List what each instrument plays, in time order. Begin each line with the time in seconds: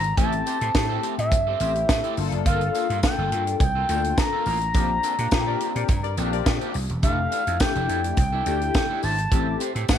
Already playing: slap bass G#1, analog synth lead A#5
0.04 muted clean electric guitar stroke, closed hi-hat
0.17 slap bass A1, analog polysynth A3 C4 E4 G4, clean electric guitar C4 G4 A4, analog synth lead A5, kick, closed hi-hat, tambourine
0.32 closed hi-hat
0.46 clean electric guitar C4 G4 C5, closed hi-hat, tambourine
0.61 slap bass A2, clean electric guitar C4 G4 A4, closed hi-hat
0.74 slap bass A2, analog polysynth A3 C4 E4 G4, kick, snare, tambourine
0.89 clean electric guitar C4 G4 A4
1.03 clean electric guitar C4 G4 A4, closed hi-hat
1.18 slap bass A2, analog synth lead E5, muted clean electric guitar stroke, closed hi-hat
1.31 slap bass G2, muted clean electric guitar stroke, kick, closed hi-hat, tambourine
1.47 clean electric guitar C4 G4 A4
1.60 slap bass A1, analog polysynth A3 C4 E4 G4, clean electric guitar C4 G4 C5, closed hi-hat, tambourine
1.75 muted clean electric guitar stroke, closed hi-hat
1.89 slap bass A2, kick, snare, tambourine
2.04 clean electric guitar C4 G4 A4, closed hi-hat
2.17 slap bass G1, analog polysynth A#3 D4 F4 A4, muted clean electric guitar stroke, open hi-hat, tambourine
2.32 slap bass F#1, muted clean electric guitar stroke, closed hi-hat
2.46 slap bass G1, clean electric guitar A#3 F4 A4, analog synth lead F5, kick, closed hi-hat
2.61 closed hi-hat
2.75 clean electric guitar A#3 F4 A4, closed hi-hat, tambourine
2.90 slap bass G2, clean electric guitar A#3 F4 A4, closed hi-hat
3.03 analog polysynth A#3 D4 F4 A4, analog synth lead G5, kick, snare, tambourine
3.18 slap bass G1, clean electric guitar A#3 F4 A4
3.32 slap bass G2, clean electric guitar A#3 F4 A4, closed hi-hat
3.47 closed hi-hat
3.60 slap bass C2, analog synth lead G5, muted clean electric guitar stroke, kick, closed hi-hat, tambourine
3.75 clean electric guitar A#3 F4 A4
3.88 slap bass D2, analog polysynth A3 D4 F4 A4, clean electric guitar A#3 F4 A4, closed hi-hat, tambourine
3.95 analog polysynth A#3
4.04 closed hi-hat
4.18 analog synth lead A#5, muted clean electric guitar stroke, kick, snare, tambourine
4.33 clean electric guitar A#3 F4 A4
4.46 slap bass A1, clean electric guitar A#3 F4 A#4, analog synth lead A#5, open hi-hat, tambourine
4.61 muted clean electric guitar stroke, closed hi-hat
4.74 slap bass A#1, clean electric guitar A#3 D4 G4, analog polysynth C4 D4 F4 G4, kick, closed hi-hat, tambourine
5.03 clean electric guitar A#3 D4 A4, closed hi-hat, tambourine
5.18 slap bass A#2, clean electric guitar A#3 D4 G4, closed hi-hat
5.31 slap bass A#2, analog polysynth C4 D4 F4 G4, kick, snare, tambourine
5.46 clean electric guitar A#3 D4 G4, horn section G4 A#4 D5
5.60 clean electric guitar A#3 D4 G4, closed hi-hat
5.75 slap bass A#2, horn section G4 A#4 D5, muted clean electric guitar stroke, closed hi-hat
5.88 slap bass G2, muted clean electric guitar stroke, kick, closed hi-hat, tambourine
6.04 horn section G4 A#4 D5, muted clean electric guitar stroke, closed hi-hat
6.17 slap bass A#1, clean electric guitar A#3 D4 A4, analog polysynth C4 D4 F4 G4, closed hi-hat, tambourine
6.32 horn section G4 A#4 D5, muted clean electric guitar stroke, closed hi-hat
6.46 slap bass A#2, kick, snare, tambourine
6.61 clean electric guitar A#3 D4 G4, closed hi-hat
6.74 slap bass C2, muted clean electric guitar stroke, open hi-hat, tambourine
6.89 slap bass E1, muted clean electric guitar stroke, closed hi-hat
7.03 slap bass F1, analog polysynth E3 A3 D4 G4, clean electric guitar D4 E4 A4, analog synth lead F5, kick, closed hi-hat, tambourine
7.31 clean electric guitar D4 E4 A4, closed hi-hat, tambourine
7.47 slap bass F2, clean electric guitar D4 E4 A4, closed hi-hat
7.60 analog polysynth A3 D4 E4 G4, analog synth lead G5, kick, snare, tambourine
7.75 slap bass F1, clean electric guitar D4 E4 A4, closed hi-hat
7.88 slap bass F2, clean electric guitar D4 E4 A4, closed hi-hat
8.04 closed hi-hat
8.17 slap bass C2, analog synth lead G5, muted clean electric guitar stroke, kick, closed hi-hat, tambourine
8.32 clean electric guitar D4 E4 A4
8.45 slap bass D2, analog polysynth A3 D4 E4 G4, clean electric guitar D4 E4 A4, closed hi-hat, tambourine
8.61 muted clean electric guitar stroke, closed hi-hat
8.74 kick, snare, tambourine
8.90 clean electric guitar D4 E4 A4
9.03 slap bass G#1, clean electric guitar D4 E4 C5, analog synth lead A5, open hi-hat, tambourine
9.18 muted clean electric guitar stroke, closed hi-hat
9.31 slap bass A1, analog polysynth A3 C4 E4 G4, clean electric guitar C4 G4 A4, kick, closed hi-hat
9.60 clean electric guitar C4 G4 C5, closed hi-hat, tambourine
9.75 slap bass A2, clean electric guitar C4 G4 A4, closed hi-hat
9.88 slap bass A2, analog polysynth A3 C4 E4 G4, analog synth lead G5, kick, snare, tambourine